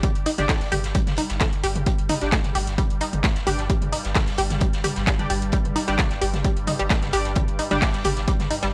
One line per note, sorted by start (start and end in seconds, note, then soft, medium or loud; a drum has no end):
0.00 8.73 G2 medium
0.00 8.73 G3 medium
0.00 0.08 G3 medium
0.00 kick loud
0.00 closed hi-hat medium
0.00 mid tom medium
0.15 0.26 G1 medium
0.15 closed hi-hat medium
0.26 0.31 D#4 medium
0.26 closed hi-hat medium
0.26 open hi-hat loud
0.38 0.49 G1 medium
0.38 0.55 D4 loud
0.38 0.55 G4 medium
0.38 0.55 D5 loud
0.38 snare medium
0.38 closed hi-hat medium
0.38 mid tom medium
0.49 0.53 A3 medium
0.49 kick loud
0.49 snare loud
0.49 clap loud
0.49 closed hi-hat medium
0.49 open hi-hat medium
0.61 0.71 G1 medium
0.61 snare soft
0.61 closed hi-hat medium
0.71 0.83 G1 loud
0.71 0.75 G4 loud
0.71 closed hi-hat medium
0.71 open hi-hat loud
0.71 mid tom medium
0.84 0.95 G1 medium
0.84 snare medium
0.84 closed hi-hat medium
0.95 0.99 G3 medium
0.95 kick loud
0.95 closed hi-hat medium
1.07 1.18 G1 medium
1.07 snare medium
1.07 closed hi-hat medium
1.07 mid tom medium
1.17 1.22 D#4 medium
1.17 closed hi-hat medium
1.17 open hi-hat loud
1.29 1.40 G1 medium
1.29 snare medium
1.29 closed hi-hat medium
1.41 1.45 A3 medium
1.41 kick loud
1.41 snare loud
1.41 clap loud
1.41 closed hi-hat medium
1.41 mid tom medium
1.53 1.63 G1 medium
1.53 closed hi-hat medium
1.63 1.75 G1 loud
1.63 1.66 G4 loud
1.63 closed hi-hat medium
1.63 open hi-hat loud
1.75 1.86 G1 medium
1.75 closed hi-hat medium
1.75 mid tom medium
1.86 1.91 G3 medium
1.86 kick loud
1.86 closed hi-hat medium
1.98 2.09 G1 medium
1.98 closed hi-hat medium
2.09 2.14 D#4 medium
2.09 closed hi-hat medium
2.09 open hi-hat loud
2.09 mid tom medium
2.21 2.32 G1 medium
2.21 2.32 D4 medium
2.21 2.32 G4 medium
2.21 2.32 D5 medium
2.21 snare soft
2.21 closed hi-hat medium
2.32 2.37 A3 medium
2.32 kick loud
2.32 snare loud
2.32 clap loud
2.32 closed hi-hat medium
2.44 2.55 G1 medium
2.44 snare soft
2.44 closed hi-hat medium
2.44 mid tom medium
2.55 2.67 G1 loud
2.55 2.58 G4 loud
2.55 closed hi-hat medium
2.55 open hi-hat loud
2.67 2.78 G1 medium
2.67 snare soft
2.67 closed hi-hat medium
2.78 2.82 G3 medium
2.78 kick loud
2.78 closed hi-hat medium
2.78 closed hi-hat loud
2.78 mid tom medium
2.90 3.01 G1 medium
2.90 closed hi-hat medium
3.01 3.05 D#4 medium
3.01 closed hi-hat medium
3.01 open hi-hat loud
3.13 3.24 G1 medium
3.13 closed hi-hat medium
3.13 mid tom medium
3.24 3.28 A3 medium
3.24 kick loud
3.24 snare loud
3.24 clap loud
3.24 closed hi-hat loud
3.24 closed hi-hat medium
3.35 3.46 G1 medium
3.35 snare medium
3.35 closed hi-hat medium
3.47 3.58 G1 loud
3.47 3.58 D4 medium
3.47 3.49 G4 loud
3.47 3.58 G4 medium
3.47 3.58 D5 medium
3.47 closed hi-hat medium
3.47 open hi-hat loud
3.47 mid tom medium
3.58 3.69 G1 medium
3.58 snare soft
3.58 closed hi-hat medium
3.70 3.74 G3 medium
3.70 kick loud
3.70 closed hi-hat medium
3.82 3.92 G1 medium
3.82 closed hi-hat medium
3.82 mid tom medium
3.92 3.97 D#4 medium
3.92 closed hi-hat medium
3.92 open hi-hat loud
4.04 4.15 G1 medium
4.04 snare medium
4.04 closed hi-hat medium
4.15 4.20 A3 medium
4.15 kick loud
4.15 snare loud
4.15 clap loud
4.15 closed hi-hat medium
4.15 open hi-hat medium
4.15 mid tom medium
4.27 4.38 G1 medium
4.27 snare medium
4.27 closed hi-hat medium
4.38 4.50 G1 loud
4.38 4.41 G4 loud
4.38 closed hi-hat medium
4.38 open hi-hat loud
4.50 4.61 G1 medium
4.50 snare medium
4.50 closed hi-hat medium
4.50 mid tom medium
4.61 4.66 G3 medium
4.61 kick loud
4.61 closed hi-hat medium
4.73 4.84 G1 medium
4.73 snare medium
4.73 closed hi-hat medium
4.84 4.87 G4 loud
4.84 closed hi-hat medium
4.84 open hi-hat loud
4.84 mid tom medium
4.96 5.07 G1 medium
4.96 snare medium
4.96 closed hi-hat medium
5.07 5.14 G3 medium
5.07 kick loud
5.07 snare loud
5.07 clap loud
5.07 closed hi-hat medium
5.19 5.29 G1 medium
5.19 5.29 D4 medium
5.19 5.29 G4 medium
5.19 5.29 D5 medium
5.19 closed hi-hat medium
5.19 mid tom medium
5.30 5.41 G1 loud
5.30 5.33 G4 medium
5.30 closed hi-hat medium
5.30 open hi-hat loud
5.42 5.53 G1 medium
5.42 closed hi-hat medium
5.52 5.57 G3 medium
5.52 kick loud
5.52 closed hi-hat medium
5.65 5.76 G1 medium
5.65 closed hi-hat medium
5.65 mid tom medium
5.76 5.80 D#4 medium
5.76 closed hi-hat medium
5.76 open hi-hat loud
5.88 5.99 G1 medium
5.88 5.90 G3 loud
5.88 5.98 D4 medium
5.88 5.98 G4 medium
5.88 5.98 D5 medium
5.88 snare soft
5.88 closed hi-hat medium
5.98 6.03 A3 medium
5.98 kick loud
5.98 snare loud
5.98 clap loud
5.98 closed hi-hat medium
5.98 mid tom medium
6.11 6.21 G1 medium
6.11 snare soft
6.11 closed hi-hat medium
6.21 6.33 G1 loud
6.21 6.24 G4 loud
6.21 closed hi-hat medium
6.21 open hi-hat loud
6.34 6.44 G1 medium
6.34 snare soft
6.34 closed hi-hat medium
6.34 mid tom medium
6.44 6.49 G3 medium
6.44 kick loud
6.44 closed hi-hat medium
6.57 6.67 G1 medium
6.57 closed hi-hat medium
6.67 6.72 D#4 medium
6.67 closed hi-hat medium
6.67 open hi-hat loud
6.67 mid tom medium
6.79 6.90 G1 medium
6.79 6.82 G3 loud
6.79 closed hi-hat medium
6.90 6.95 A3 medium
6.90 kick loud
6.90 snare loud
6.90 clap loud
6.90 closed hi-hat loud
6.90 closed hi-hat medium
7.02 7.13 G1 medium
7.02 snare medium
7.02 closed hi-hat soft
7.02 mid tom medium
7.13 7.25 G1 loud
7.13 7.25 D4 medium
7.13 7.16 G4 loud
7.13 7.25 G4 medium
7.13 7.25 D5 medium
7.13 closed hi-hat medium
7.13 open hi-hat loud
7.25 7.36 G1 medium
7.25 snare soft
7.25 closed hi-hat medium
7.35 7.40 G3 medium
7.35 kick loud
7.35 closed hi-hat medium
7.35 mid tom medium
7.48 7.59 G1 medium
7.48 closed hi-hat medium
7.59 7.63 D#4 medium
7.59 closed hi-hat medium
7.59 open hi-hat loud
7.71 7.82 G1 medium
7.71 7.73 G3 loud
7.71 7.88 D4 loud
7.71 7.88 G4 medium
7.71 7.88 D5 loud
7.71 snare medium
7.71 closed hi-hat soft
7.71 mid tom medium
7.82 7.86 A3 medium
7.82 kick loud
7.82 snare loud
7.82 clap loud
7.82 closed hi-hat medium
7.82 open hi-hat medium
7.94 8.04 G1 medium
7.94 snare medium
7.94 closed hi-hat medium
8.04 8.16 G1 loud
8.04 8.07 G4 loud
8.04 closed hi-hat medium
8.04 open hi-hat loud
8.04 mid tom medium
8.17 8.28 G1 medium
8.17 snare medium
8.17 closed hi-hat medium
8.27 8.32 G3 medium
8.27 kick loud
8.27 closed hi-hat medium
8.40 8.50 G1 medium
8.40 snare medium
8.40 closed hi-hat medium
8.40 mid tom medium
8.51 8.55 D#4 medium
8.51 closed hi-hat medium
8.51 open hi-hat loud
8.62 8.73 G1 medium
8.62 8.65 G3 loud
8.62 snare medium
8.62 closed hi-hat medium